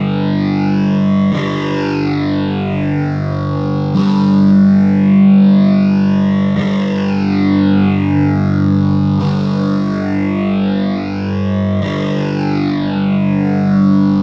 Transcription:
0, 0, Header, 1, 2, 480
1, 0, Start_track
1, 0, Tempo, 500000
1, 13658, End_track
2, 0, Start_track
2, 0, Title_t, "Distorted electric guitar"
2, 0, Program_c, 0, 30
2, 0, Note_on_c, 0, 43, 78
2, 0, Note_on_c, 0, 50, 92
2, 0, Note_on_c, 0, 55, 95
2, 1263, Note_off_c, 0, 43, 0
2, 1267, Note_on_c, 0, 43, 80
2, 1270, Note_off_c, 0, 50, 0
2, 1287, Note_on_c, 0, 50, 90
2, 1305, Note_off_c, 0, 55, 0
2, 1309, Note_on_c, 0, 55, 92
2, 3783, Note_off_c, 0, 43, 0
2, 3783, Note_off_c, 0, 50, 0
2, 3787, Note_on_c, 0, 43, 82
2, 3808, Note_on_c, 0, 50, 85
2, 3818, Note_off_c, 0, 55, 0
2, 3822, Note_on_c, 0, 55, 99
2, 6295, Note_off_c, 0, 43, 0
2, 6298, Note_on_c, 0, 43, 95
2, 6302, Note_off_c, 0, 50, 0
2, 6324, Note_on_c, 0, 50, 88
2, 6333, Note_off_c, 0, 55, 0
2, 6337, Note_on_c, 0, 55, 99
2, 8820, Note_off_c, 0, 50, 0
2, 8824, Note_off_c, 0, 43, 0
2, 8828, Note_on_c, 0, 43, 92
2, 8845, Note_on_c, 0, 50, 91
2, 8857, Note_off_c, 0, 55, 0
2, 8861, Note_on_c, 0, 55, 89
2, 11339, Note_off_c, 0, 43, 0
2, 11339, Note_off_c, 0, 50, 0
2, 11343, Note_on_c, 0, 43, 89
2, 11365, Note_on_c, 0, 50, 94
2, 11373, Note_off_c, 0, 55, 0
2, 11377, Note_on_c, 0, 55, 93
2, 13658, Note_off_c, 0, 43, 0
2, 13658, Note_off_c, 0, 50, 0
2, 13658, Note_off_c, 0, 55, 0
2, 13658, End_track
0, 0, End_of_file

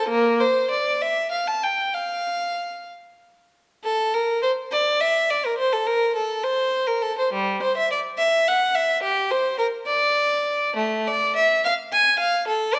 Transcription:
0, 0, Header, 1, 2, 480
1, 0, Start_track
1, 0, Key_signature, -1, "major"
1, 0, Tempo, 613497
1, 63, Time_signature, 6, 3, 24, 8
1, 1025, Tempo, 636267
1, 2945, Tempo, 573614
1, 5345, Tempo, 595238
1, 6305, Tempo, 557621
1, 8225, Tempo, 600601
1, 9185, Tempo, 564972
1, 10414, End_track
2, 0, Start_track
2, 0, Title_t, "Violin"
2, 0, Program_c, 0, 40
2, 68, Note_on_c, 0, 58, 103
2, 297, Note_off_c, 0, 58, 0
2, 313, Note_on_c, 0, 72, 93
2, 548, Note_off_c, 0, 72, 0
2, 550, Note_on_c, 0, 74, 87
2, 783, Note_off_c, 0, 74, 0
2, 794, Note_on_c, 0, 76, 97
2, 1028, Note_on_c, 0, 77, 82
2, 1030, Note_off_c, 0, 76, 0
2, 1142, Note_off_c, 0, 77, 0
2, 1149, Note_on_c, 0, 81, 91
2, 1265, Note_off_c, 0, 81, 0
2, 1268, Note_on_c, 0, 79, 82
2, 1498, Note_on_c, 0, 77, 81
2, 1507, Note_off_c, 0, 79, 0
2, 2226, Note_off_c, 0, 77, 0
2, 2934, Note_on_c, 0, 69, 90
2, 3166, Note_off_c, 0, 69, 0
2, 3182, Note_on_c, 0, 70, 87
2, 3422, Note_on_c, 0, 72, 84
2, 3427, Note_off_c, 0, 70, 0
2, 3488, Note_off_c, 0, 72, 0
2, 3667, Note_on_c, 0, 74, 97
2, 3903, Note_off_c, 0, 74, 0
2, 3907, Note_on_c, 0, 76, 97
2, 4149, Note_off_c, 0, 76, 0
2, 4151, Note_on_c, 0, 74, 90
2, 4271, Note_off_c, 0, 74, 0
2, 4282, Note_on_c, 0, 70, 79
2, 4386, Note_on_c, 0, 72, 95
2, 4397, Note_off_c, 0, 70, 0
2, 4507, Note_off_c, 0, 72, 0
2, 4509, Note_on_c, 0, 69, 85
2, 4628, Note_on_c, 0, 70, 92
2, 4630, Note_off_c, 0, 69, 0
2, 4868, Note_off_c, 0, 70, 0
2, 4871, Note_on_c, 0, 69, 81
2, 5101, Note_off_c, 0, 69, 0
2, 5102, Note_on_c, 0, 72, 96
2, 5461, Note_off_c, 0, 72, 0
2, 5463, Note_on_c, 0, 70, 87
2, 5583, Note_off_c, 0, 70, 0
2, 5586, Note_on_c, 0, 69, 88
2, 5707, Note_off_c, 0, 69, 0
2, 5717, Note_on_c, 0, 72, 77
2, 5832, Note_off_c, 0, 72, 0
2, 5833, Note_on_c, 0, 55, 87
2, 6068, Note_off_c, 0, 55, 0
2, 6071, Note_on_c, 0, 72, 88
2, 6186, Note_off_c, 0, 72, 0
2, 6189, Note_on_c, 0, 76, 88
2, 6302, Note_off_c, 0, 76, 0
2, 6305, Note_on_c, 0, 74, 81
2, 6374, Note_off_c, 0, 74, 0
2, 6536, Note_on_c, 0, 76, 102
2, 6779, Note_off_c, 0, 76, 0
2, 6789, Note_on_c, 0, 78, 96
2, 7025, Note_on_c, 0, 76, 93
2, 7029, Note_off_c, 0, 78, 0
2, 7262, Note_on_c, 0, 67, 93
2, 7264, Note_off_c, 0, 76, 0
2, 7496, Note_off_c, 0, 67, 0
2, 7507, Note_on_c, 0, 72, 91
2, 7741, Note_on_c, 0, 70, 85
2, 7744, Note_off_c, 0, 72, 0
2, 7810, Note_off_c, 0, 70, 0
2, 7983, Note_on_c, 0, 74, 104
2, 8700, Note_off_c, 0, 74, 0
2, 8719, Note_on_c, 0, 57, 91
2, 8952, Note_off_c, 0, 57, 0
2, 8970, Note_on_c, 0, 74, 102
2, 9192, Note_off_c, 0, 74, 0
2, 9197, Note_on_c, 0, 76, 100
2, 9424, Note_off_c, 0, 76, 0
2, 9444, Note_on_c, 0, 77, 107
2, 9512, Note_off_c, 0, 77, 0
2, 9674, Note_on_c, 0, 80, 107
2, 9901, Note_on_c, 0, 77, 105
2, 9904, Note_off_c, 0, 80, 0
2, 10137, Note_off_c, 0, 77, 0
2, 10145, Note_on_c, 0, 69, 91
2, 10376, Note_on_c, 0, 74, 105
2, 10379, Note_off_c, 0, 69, 0
2, 10414, Note_off_c, 0, 74, 0
2, 10414, End_track
0, 0, End_of_file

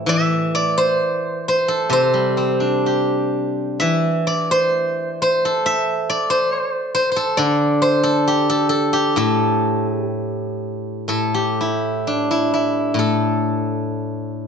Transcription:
0, 0, Header, 1, 2, 480
1, 0, Start_track
1, 0, Tempo, 910470
1, 39, Time_signature, 2, 2, 24, 8
1, 1000, Tempo, 949367
1, 2440, Tempo, 914634
1, 2920, Tempo, 879765
1, 4840, Tempo, 955414
1, 6280, Tempo, 870827
1, 7618, End_track
2, 0, Start_track
2, 0, Title_t, "Guzheng"
2, 0, Program_c, 0, 107
2, 0, Note_on_c, 0, 45, 57
2, 0, Note_on_c, 0, 57, 46
2, 0, Note_on_c, 0, 60, 45
2, 0, Note_on_c, 0, 64, 49
2, 0, Note_on_c, 0, 67, 78
2, 33, Note_on_c, 0, 52, 64
2, 47, Note_on_c, 0, 76, 105
2, 275, Note_off_c, 0, 67, 0
2, 280, Note_off_c, 0, 57, 0
2, 289, Note_on_c, 0, 74, 87
2, 399, Note_off_c, 0, 60, 0
2, 409, Note_on_c, 0, 72, 89
2, 513, Note_off_c, 0, 45, 0
2, 520, Note_off_c, 0, 64, 0
2, 780, Note_off_c, 0, 72, 0
2, 782, Note_on_c, 0, 72, 83
2, 888, Note_on_c, 0, 69, 75
2, 955, Note_off_c, 0, 76, 0
2, 1000, Note_on_c, 0, 48, 68
2, 1013, Note_off_c, 0, 72, 0
2, 1015, Note_on_c, 0, 72, 90
2, 1121, Note_on_c, 0, 55, 46
2, 1240, Note_on_c, 0, 60, 45
2, 1252, Note_off_c, 0, 74, 0
2, 1356, Note_on_c, 0, 62, 42
2, 1475, Note_off_c, 0, 52, 0
2, 1488, Note_on_c, 0, 67, 46
2, 1961, Note_on_c, 0, 76, 90
2, 1963, Note_off_c, 0, 48, 0
2, 1968, Note_on_c, 0, 52, 58
2, 2002, Note_off_c, 0, 69, 0
2, 2018, Note_off_c, 0, 72, 0
2, 2085, Note_off_c, 0, 55, 0
2, 2199, Note_on_c, 0, 74, 80
2, 2205, Note_off_c, 0, 60, 0
2, 2322, Note_off_c, 0, 62, 0
2, 2322, Note_on_c, 0, 72, 87
2, 2446, Note_off_c, 0, 67, 0
2, 2687, Note_off_c, 0, 72, 0
2, 2689, Note_on_c, 0, 72, 85
2, 2811, Note_on_c, 0, 69, 78
2, 2846, Note_off_c, 0, 76, 0
2, 2919, Note_on_c, 0, 76, 107
2, 3156, Note_off_c, 0, 74, 0
2, 3158, Note_on_c, 0, 74, 87
2, 3267, Note_off_c, 0, 72, 0
2, 3269, Note_on_c, 0, 72, 92
2, 3401, Note_off_c, 0, 52, 0
2, 3620, Note_off_c, 0, 72, 0
2, 3622, Note_on_c, 0, 72, 95
2, 3712, Note_off_c, 0, 72, 0
2, 3714, Note_on_c, 0, 72, 63
2, 3739, Note_off_c, 0, 69, 0
2, 3741, Note_on_c, 0, 69, 82
2, 3852, Note_off_c, 0, 74, 0
2, 3854, Note_on_c, 0, 74, 102
2, 3859, Note_off_c, 0, 76, 0
2, 3861, Note_on_c, 0, 50, 69
2, 4095, Note_off_c, 0, 72, 0
2, 4097, Note_on_c, 0, 72, 87
2, 4214, Note_off_c, 0, 69, 0
2, 4216, Note_on_c, 0, 69, 93
2, 4347, Note_on_c, 0, 67, 84
2, 4465, Note_off_c, 0, 69, 0
2, 4467, Note_on_c, 0, 69, 96
2, 4573, Note_off_c, 0, 69, 0
2, 4575, Note_on_c, 0, 69, 89
2, 4702, Note_off_c, 0, 67, 0
2, 4704, Note_on_c, 0, 67, 87
2, 4831, Note_on_c, 0, 45, 74
2, 4834, Note_off_c, 0, 50, 0
2, 4834, Note_off_c, 0, 69, 0
2, 4836, Note_on_c, 0, 69, 86
2, 4861, Note_off_c, 0, 74, 0
2, 5153, Note_off_c, 0, 72, 0
2, 5198, Note_off_c, 0, 69, 0
2, 5198, Note_on_c, 0, 68, 86
2, 5284, Note_off_c, 0, 67, 0
2, 5284, Note_off_c, 0, 68, 0
2, 5284, Note_on_c, 0, 67, 86
2, 5790, Note_off_c, 0, 45, 0
2, 5795, Note_on_c, 0, 45, 45
2, 5797, Note_off_c, 0, 67, 0
2, 5799, Note_on_c, 0, 69, 79
2, 5928, Note_on_c, 0, 67, 63
2, 6060, Note_on_c, 0, 64, 62
2, 6295, Note_on_c, 0, 62, 59
2, 6423, Note_off_c, 0, 64, 0
2, 6425, Note_on_c, 0, 64, 67
2, 6549, Note_off_c, 0, 64, 0
2, 6551, Note_on_c, 0, 64, 63
2, 6768, Note_off_c, 0, 45, 0
2, 6774, Note_on_c, 0, 45, 51
2, 6798, Note_off_c, 0, 69, 0
2, 6800, Note_on_c, 0, 69, 73
2, 7193, Note_off_c, 0, 67, 0
2, 7618, Note_off_c, 0, 45, 0
2, 7618, Note_off_c, 0, 62, 0
2, 7618, Note_off_c, 0, 64, 0
2, 7618, Note_off_c, 0, 69, 0
2, 7618, End_track
0, 0, End_of_file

